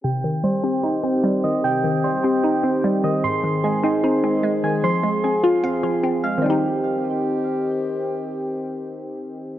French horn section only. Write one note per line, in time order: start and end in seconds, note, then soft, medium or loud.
0.04 4.80 D#3 medium
0.04 6.40 C4 medium
0.04 3.21 G4 medium
3.24 6.41 G#4 medium
4.84 6.42 F3 medium
6.44 9.59 D#3 medium
6.44 9.59 C4 medium
6.44 9.59 G4 medium